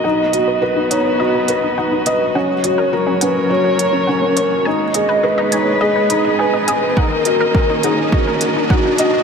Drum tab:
HH |-x-x-x-x|-x-x-x-x|-x-x-x-x|-x-x-x-x|
BD |--------|--------|--------|o-o-o-o-|